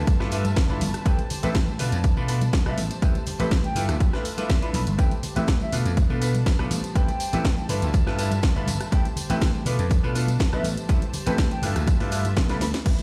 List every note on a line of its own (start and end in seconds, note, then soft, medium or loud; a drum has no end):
0.00 0.15 D2 loud
0.00 1.04 F4 medium
0.00 1.04 B4 medium
0.00 1.04 E5 medium
0.00 6.67 A5 medium
0.07 kick loud
0.07 closed hi-hat medium
0.07 tambourine medium
0.07 tambourine soft
0.07 high conga medium
0.19 0.53 G2 loud
0.19 0.29 A3 loud
0.19 0.29 D4 medium
0.19 0.29 E4 medium
0.19 0.29 F4 medium
0.19 0.29 B4 loud
0.19 cross-stick medium
0.19 snare soft
0.19 tambourine soft
0.31 0.43 A3 medium
0.31 0.43 D4 medium
0.31 0.43 E4 medium
0.31 0.43 F4 medium
0.31 0.43 B4 medium
0.31 open hi-hat loud
0.31 tambourine loud
0.31 tambourine medium
0.44 closed hi-hat medium
0.44 tambourine soft
0.44 high conga medium
0.56 kick loud
0.56 snare loud
0.56 closed hi-hat medium
0.56 tambourine soft
0.69 0.79 G1 medium
0.69 0.79 A3 medium
0.69 0.79 D4 medium
0.69 0.79 E4 medium
0.69 0.79 F4 medium
0.69 0.79 B4 loud
0.69 tambourine soft
0.81 0.91 G1 medium
0.81 open hi-hat loud
0.81 tambourine loud
0.81 tambourine medium
0.81 high conga medium
0.94 cross-stick medium
0.94 closed hi-hat medium
0.94 tambourine soft
1.05 1.16 A1 loud
1.05 1.16 A3 medium
1.05 1.16 C4 medium
1.05 1.16 E4 medium
1.05 1.78 G4 medium
1.05 1.17 G4 medium
1.05 1.17 B4 loud
1.05 1.78 C5 medium
1.05 1.19 G5 medium
1.05 kick loud
1.05 closed hi-hat medium
1.05 tambourine soft
1.18 closed hi-hat soft
1.18 tambourine soft
1.18 high conga loud
1.30 open hi-hat loud
1.30 tambourine medium
1.30 low conga medium
1.43 1.76 A1 loud
1.43 1.53 A3 medium
1.43 1.53 C4 medium
1.43 1.53 E4 medium
1.43 1.53 G4 medium
1.43 1.53 B4 loud
1.43 closed hi-hat medium
1.43 tambourine soft
1.55 kick loud
1.55 snare loud
1.55 closed hi-hat medium
1.55 tambourine soft
1.55 tambourine medium
1.68 tambourine soft
1.68 high conga medium
1.79 1.90 B2 medium
1.79 1.96 A3 medium
1.79 1.96 B3 medium
1.79 2.76 D4 medium
1.79 1.96 D4 medium
1.79 1.96 F4 medium
1.79 2.76 B4 medium
1.79 1.97 B4 medium
1.79 open hi-hat loud
1.79 tambourine medium
1.79 low conga medium
1.92 2.12 F2 loud
1.92 closed hi-hat medium
1.92 tambourine soft
2.04 kick loud
2.04 closed hi-hat medium
2.04 tambourine soft
2.04 high conga loud
2.16 2.49 B2 loud
2.16 2.26 A3 medium
2.16 2.26 B3 medium
2.16 2.26 D4 medium
2.16 2.26 F4 medium
2.16 2.26 B4 loud
2.16 tambourine soft
2.28 2.39 A3 medium
2.28 2.39 B3 medium
2.28 2.39 D4 medium
2.28 2.39 F4 medium
2.28 2.40 B4 medium
2.28 open hi-hat loud
2.28 tambourine loud
2.28 tambourine medium
2.41 closed hi-hat medium
2.41 tambourine soft
2.41 high conga medium
2.53 kick loud
2.53 snare loud
2.53 closed hi-hat medium
2.53 tambourine medium
2.53 tambourine soft
2.65 2.75 B1 medium
2.65 2.76 A3 medium
2.65 2.76 B3 medium
2.65 2.76 D4 medium
2.65 2.76 F4 medium
2.65 2.76 B4 loud
2.65 2.78 E5 loud
2.65 cross-stick medium
2.65 tambourine soft
2.77 2.88 A1 medium
2.77 3.75 G4 medium
2.77 3.75 C5 medium
2.77 open hi-hat loud
2.77 tambourine medium
2.77 high conga loud
2.90 closed hi-hat medium
2.90 tambourine soft
3.02 3.13 A1 loud
3.02 3.13 A3 medium
3.02 3.13 C4 medium
3.02 3.13 E4 medium
3.02 3.13 G4 medium
3.02 3.13 B4 loud
3.02 kick loud
3.02 closed hi-hat medium
3.02 tambourine soft
3.14 closed hi-hat soft
3.14 tambourine soft
3.14 high conga loud
3.26 open hi-hat loud
3.26 tambourine medium
3.26 low conga medium
3.39 3.72 A1 loud
3.39 3.49 A3 medium
3.39 3.49 C4 medium
3.39 3.49 E4 medium
3.39 3.50 G4 medium
3.39 3.50 B4 loud
3.39 closed hi-hat medium
3.39 tambourine soft
3.51 kick loud
3.51 snare loud
3.51 closed hi-hat medium
3.51 tambourine soft
3.63 3.81 G5 medium
3.63 closed hi-hat soft
3.63 tambourine soft
3.63 high conga medium
3.75 3.86 G2 medium
3.75 3.93 A3 medium
3.75 3.93 D4 medium
3.75 3.93 E4 medium
3.75 4.97 F4 medium
3.75 3.93 F4 medium
3.75 4.97 B4 medium
3.75 3.93 B4 medium
3.75 4.97 E5 medium
3.75 open hi-hat loud
3.75 tambourine medium
3.75 low conga medium
3.89 4.08 D2 loud
3.89 cross-stick medium
3.89 closed hi-hat medium
3.89 tambourine soft
4.00 kick loud
4.00 closed hi-hat medium
4.00 tambourine soft
4.00 tambourine medium
4.00 high conga medium
4.12 4.23 A3 medium
4.12 4.23 D4 medium
4.12 4.23 E4 medium
4.12 4.23 F4 medium
4.12 4.23 B4 loud
4.12 cross-stick medium
4.12 snare soft
4.12 tambourine soft
4.25 open hi-hat loud
4.25 tambourine loud
4.25 tambourine medium
4.37 4.54 A3 medium
4.37 4.54 D4 medium
4.37 4.54 E4 medium
4.37 4.54 F4 medium
4.37 4.54 B4 loud
4.37 closed hi-hat medium
4.37 tambourine soft
4.37 high conga medium
4.50 kick loud
4.50 snare loud
4.50 closed hi-hat medium
4.50 tambourine soft
4.50 tambourine medium
4.62 4.79 A3 medium
4.62 4.79 D4 medium
4.62 4.79 E4 medium
4.62 4.79 F4 medium
4.62 4.79 B4 medium
4.62 4.70 B5 medium
4.62 closed hi-hat soft
4.62 tambourine soft
4.73 4.84 B1 loud
4.73 4.82 B5 medium
4.73 open hi-hat loud
4.73 tambourine medium
4.73 tambourine loud
4.73 high conga medium
4.87 4.96 G1 medium
4.87 closed hi-hat medium
4.87 tambourine soft
4.98 5.09 A1 loud
4.98 5.09 A3 medium
4.98 5.09 C4 medium
4.98 5.10 E4 medium
4.98 5.72 G4 medium
4.98 5.10 G4 medium
4.98 5.10 B4 loud
4.98 5.72 C5 medium
4.98 5.12 G5 medium
4.98 kick loud
4.98 closed hi-hat medium
4.98 tambourine soft
4.98 tambourine medium
5.11 closed hi-hat soft
5.11 tambourine soft
5.11 high conga medium
5.23 open hi-hat loud
5.23 tambourine medium
5.23 low conga medium
5.35 5.69 A1 loud
5.35 5.46 A3 loud
5.35 5.46 C4 medium
5.35 5.46 E4 medium
5.35 5.46 G4 medium
5.35 5.46 B4 loud
5.35 closed hi-hat medium
5.35 tambourine soft
5.48 kick loud
5.48 snare loud
5.48 closed hi-hat medium
5.48 tambourine soft
5.61 5.74 E5 medium
5.61 tambourine soft
5.61 high conga medium
5.72 5.83 B2 medium
5.72 5.89 A3 medium
5.72 5.90 B3 medium
5.72 6.70 D4 medium
5.72 5.90 D4 medium
5.72 5.90 F4 medium
5.72 6.70 B4 medium
5.72 5.90 B4 medium
5.72 open hi-hat loud
5.72 tambourine medium
5.72 low conga medium
5.85 6.05 F2 loud
5.85 closed hi-hat medium
5.85 tambourine soft
5.97 kick loud
5.97 closed hi-hat medium
5.97 tambourine medium
5.97 tambourine soft
5.97 high conga medium
6.09 6.43 B2 loud
6.09 6.19 A3 medium
6.09 6.19 B3 medium
6.09 6.19 D4 medium
6.09 6.19 F4 medium
6.09 6.20 B4 loud
6.09 tambourine soft
6.21 6.32 A3 medium
6.21 6.33 B3 medium
6.21 6.33 D4 medium
6.21 6.33 F4 medium
6.21 6.33 B4 medium
6.21 open hi-hat loud
6.21 tambourine medium
6.35 closed hi-hat medium
6.35 tambourine soft
6.35 high conga medium
6.46 kick loud
6.46 snare loud
6.46 closed hi-hat medium
6.46 tambourine soft
6.46 tambourine medium
6.59 6.69 B1 medium
6.59 6.69 A3 medium
6.59 6.69 B3 medium
6.59 6.69 D4 medium
6.59 6.69 F4 medium
6.59 6.69 B4 loud
6.59 cross-stick medium
6.59 tambourine soft
6.71 6.81 A1 medium
6.71 7.68 G4 medium
6.71 7.68 C5 medium
6.71 9.63 A5 medium
6.71 open hi-hat loud
6.71 tambourine medium
6.71 high conga loud
6.84 closed hi-hat medium
6.84 tambourine soft
6.95 7.06 A1 loud
6.95 7.06 A3 medium
6.95 7.06 C4 medium
6.95 7.06 E4 medium
6.95 7.07 G4 medium
6.95 7.07 B4 loud
6.95 7.65 G5 loud
6.95 kick loud
6.95 closed hi-hat medium
6.95 tambourine soft
7.08 closed hi-hat soft
7.08 tambourine soft
7.08 high conga medium
7.20 open hi-hat loud
7.20 tambourine medium
7.33 7.66 A1 loud
7.33 7.43 A3 medium
7.33 7.43 C4 medium
7.33 7.43 E4 medium
7.33 7.43 G4 medium
7.33 7.43 B4 loud
7.33 closed hi-hat medium
7.33 tambourine soft
7.45 kick loud
7.45 snare loud
7.45 closed hi-hat medium
7.45 tambourine soft
7.58 tambourine soft
7.58 high conga medium
7.69 7.80 G2 medium
7.69 7.86 A3 medium
7.69 7.86 D4 medium
7.69 7.86 E4 medium
7.69 8.91 F4 medium
7.69 7.86 F4 medium
7.69 8.91 B4 medium
7.69 7.87 B4 medium
7.69 8.91 E5 medium
7.69 open hi-hat loud
7.69 tambourine loud
7.69 tambourine medium
7.69 low conga medium
7.82 8.02 D2 loud
7.82 closed hi-hat medium
7.82 tambourine soft
7.93 kick loud
7.93 closed hi-hat medium
7.93 tambourine medium
7.93 tambourine soft
7.93 high conga medium
8.06 8.39 G2 medium
8.06 8.16 A3 medium
8.06 8.16 D4 medium
8.06 8.16 E4 medium
8.06 8.16 F4 medium
8.06 8.16 B4 loud
8.06 cross-stick medium
8.06 snare soft
8.06 tambourine soft
8.18 8.29 A3 medium
8.18 8.29 D4 medium
8.18 8.29 E4 medium
8.18 8.30 F4 medium
8.18 8.30 B4 medium
8.18 open hi-hat loud
8.18 tambourine medium
8.31 closed hi-hat medium
8.31 tambourine soft
8.31 high conga medium
8.42 kick loud
8.42 snare loud
8.42 closed hi-hat medium
8.42 tambourine medium
8.42 tambourine soft
8.55 8.65 G1 medium
8.55 8.66 A3 medium
8.55 8.66 D4 medium
8.55 8.66 E4 medium
8.55 8.66 F4 medium
8.55 8.66 B4 loud
8.55 tambourine soft
8.67 8.78 G1 medium
8.67 open hi-hat loud
8.67 tambourine loud
8.67 tambourine medium
8.67 high conga medium
8.80 cross-stick medium
8.80 closed hi-hat medium
8.80 tambourine soft
8.92 9.03 A1 loud
8.92 9.03 A3 medium
8.92 9.03 C4 medium
8.92 9.03 E4 medium
8.92 9.65 G4 medium
8.92 9.03 G4 medium
8.92 9.03 B4 loud
8.92 9.65 C5 medium
8.92 9.06 G5 medium
8.92 kick loud
8.92 closed hi-hat medium
8.92 tambourine soft
9.05 closed hi-hat soft
9.05 tambourine soft
9.05 high conga medium
9.16 open hi-hat loud
9.16 tambourine medium
9.16 low conga medium
9.29 9.62 A1 medium
9.29 9.39 A3 loud
9.29 9.40 C4 medium
9.29 9.40 E4 medium
9.29 9.40 G4 medium
9.29 9.40 B4 loud
9.29 closed hi-hat medium
9.29 tambourine soft
9.41 kick loud
9.41 snare loud
9.41 closed hi-hat medium
9.41 tambourine medium
9.41 tambourine soft
9.54 tambourine soft
9.54 high conga medium
9.65 9.76 B2 medium
9.65 9.83 A3 medium
9.65 9.83 B3 medium
9.65 10.63 D4 medium
9.65 9.83 D4 medium
9.65 9.83 F4 medium
9.65 10.63 B4 medium
9.65 9.83 B4 medium
9.65 10.63 A5 medium
9.65 open hi-hat loud
9.65 tambourine loud
9.65 tambourine medium
9.65 low conga medium
9.78 9.98 F2 loud
9.78 closed hi-hat medium
9.78 tambourine soft
9.90 kick loud
9.90 closed hi-hat medium
9.90 tambourine medium
9.90 tambourine soft
9.90 high conga medium
10.03 10.36 B2 loud
10.03 10.13 A3 loud
10.03 10.13 B3 medium
10.03 10.13 D4 medium
10.03 10.13 F4 medium
10.03 10.13 B4 loud
10.03 tambourine soft
10.15 10.26 A3 medium
10.15 10.26 B3 medium
10.15 10.26 D4 medium
10.15 10.26 F4 medium
10.15 10.26 B4 medium
10.15 open hi-hat loud
10.15 tambourine loud
10.15 tambourine medium
10.27 closed hi-hat medium
10.27 tambourine soft
10.27 high conga medium
10.39 kick loud
10.39 snare loud
10.39 closed hi-hat medium
10.39 tambourine medium
10.39 tambourine soft
10.52 10.62 B1 medium
10.52 10.62 A3 loud
10.52 10.62 B3 medium
10.52 10.63 D4 medium
10.52 10.63 F4 medium
10.52 10.63 B4 loud
10.52 10.65 E5 medium
10.52 cross-stick medium
10.52 tambourine soft
10.64 10.75 A1 medium
10.64 11.62 G4 medium
10.64 11.62 C5 medium
10.64 12.84 A5 medium
10.64 open hi-hat loud
10.64 tambourine medium
10.64 high conga medium
10.77 closed hi-hat medium
10.77 tambourine soft
10.89 10.99 A1 loud
10.89 11.00 A3 medium
10.89 11.00 C4 medium
10.89 11.00 E4 medium
10.89 11.00 G4 medium
10.89 11.00 B4 loud
10.89 kick loud
10.89 closed hi-hat medium
10.89 tambourine soft
10.89 tambourine medium
11.02 closed hi-hat soft
11.02 tambourine soft
11.02 high conga medium
11.13 open hi-hat loud
11.13 tambourine loud
11.13 tambourine medium
11.13 low conga medium
11.26 11.59 A1 loud
11.26 11.36 A3 loud
11.26 11.36 C4 medium
11.26 11.36 E4 medium
11.26 11.36 G4 medium
11.26 11.37 B4 loud
11.26 closed hi-hat medium
11.26 tambourine soft
11.38 kick loud
11.38 snare loud
11.38 closed hi-hat medium
11.38 tambourine medium
11.38 tambourine soft
11.51 11.68 G5 medium
11.51 closed hi-hat soft
11.51 tambourine soft
11.51 high conga medium
11.62 11.73 G2 medium
11.62 11.80 A3 medium
11.62 11.80 D4 medium
11.62 11.80 E4 medium
11.62 11.80 F4 medium
11.62 12.85 F4 medium
11.62 12.85 B4 medium
11.62 11.80 B4 medium
11.62 12.85 E5 medium
11.62 open hi-hat loud
11.62 tambourine medium
11.62 low conga medium
11.76 11.95 D2 loud
11.76 cross-stick medium
11.76 closed hi-hat medium
11.76 tambourine soft
11.87 kick loud
11.87 closed hi-hat medium
11.87 tambourine medium
11.87 tambourine soft
11.87 high conga medium
12.00 12.33 G2 loud
12.00 12.09 A3 loud
12.00 12.10 D4 medium
12.00 12.10 E4 medium
12.00 12.10 F4 medium
12.00 12.10 B4 loud
12.00 open hi-hat medium
12.00 tambourine soft
12.11 12.23 A3 medium
12.11 12.23 D4 medium
12.11 12.23 E4 medium
12.11 12.23 F4 medium
12.11 12.23 B4 medium
12.11 open hi-hat loud
12.11 tambourine loud
12.11 tambourine medium
12.25 closed hi-hat medium
12.25 tambourine soft
12.25 high conga medium
12.37 12.61 B1 loud
12.37 kick loud
12.37 snare loud
12.37 closed hi-hat medium
12.37 tambourine soft
12.49 12.59 A3 medium
12.49 12.59 D4 medium
12.49 12.59 E4 medium
12.49 12.60 F4 medium
12.49 12.60 B4 loud
12.49 12.57 B5 medium
12.49 snare medium
12.49 closed hi-hat soft
12.49 tambourine soft
12.61 12.72 D2 medium
12.61 12.69 B5 medium
12.61 snare medium
12.61 open hi-hat loud
12.61 tambourine loud
12.61 tambourine medium
12.61 high conga medium
12.73 snare medium
12.73 closed hi-hat medium
12.73 tambourine soft
12.85 12.96 A1 loud
12.85 12.97 A3 medium
12.85 12.97 C4 medium
12.85 12.97 E4 medium
12.85 12.97 G4 medium
12.85 12.97 B4 loud
12.85 kick loud
12.85 closed hi-hat medium
12.85 crash medium
12.85 tambourine soft
12.99 closed hi-hat soft
12.99 tambourine soft
12.99 high conga medium